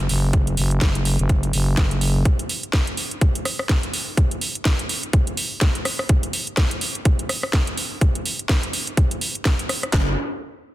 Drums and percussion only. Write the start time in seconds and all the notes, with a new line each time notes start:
0.09 open hi-hat
0.33 kick, closed hi-hat
0.47 closed hi-hat
0.57 open hi-hat
0.71 closed hi-hat
0.81 kick, snare, closed hi-hat
0.95 closed hi-hat
1.05 open hi-hat
1.19 closed hi-hat
1.29 kick, closed hi-hat
1.43 closed hi-hat
1.53 open hi-hat
1.77 kick, snare, closed hi-hat
1.91 closed hi-hat
2.01 open hi-hat
2.25 kick, closed hi-hat
2.39 closed hi-hat
2.49 open hi-hat
2.63 closed hi-hat
2.73 kick, cross-stick, snare, closed hi-hat
2.87 closed hi-hat
2.97 open hi-hat
3.11 closed hi-hat
3.21 kick, closed hi-hat
3.35 closed hi-hat
3.45 cross-stick, open hi-hat
3.59 cross-stick
3.69 kick, snare, closed hi-hat
3.83 closed hi-hat
3.93 open hi-hat
4.17 kick, closed hi-hat
4.31 closed hi-hat
4.41 open hi-hat
4.55 closed hi-hat
4.65 kick, cross-stick, snare, closed hi-hat
4.79 closed hi-hat
4.89 open hi-hat
5.03 closed hi-hat
5.13 kick, closed hi-hat
5.27 closed hi-hat
5.37 open hi-hat
5.61 kick, snare, closed hi-hat
5.75 closed hi-hat
5.85 cross-stick, open hi-hat
5.99 cross-stick
6.09 kick, closed hi-hat
6.23 closed hi-hat
6.33 open hi-hat
6.47 closed hi-hat
6.57 kick, cross-stick, snare, closed hi-hat
6.71 closed hi-hat
6.81 open hi-hat
6.95 closed hi-hat
7.05 kick, closed hi-hat
7.19 closed hi-hat
7.29 cross-stick, open hi-hat
7.43 cross-stick
7.53 kick, snare, closed hi-hat
7.67 closed hi-hat
7.77 open hi-hat
8.01 kick, closed hi-hat
8.15 closed hi-hat
8.25 open hi-hat
8.39 closed hi-hat
8.49 kick, cross-stick, snare, closed hi-hat
8.63 closed hi-hat
8.73 open hi-hat
8.87 closed hi-hat
8.97 kick, closed hi-hat
9.11 closed hi-hat
9.21 open hi-hat
9.35 closed hi-hat
9.45 kick, snare, closed hi-hat
9.59 closed hi-hat
9.69 cross-stick, open hi-hat
9.83 cross-stick, closed hi-hat
9.93 kick, snare, clap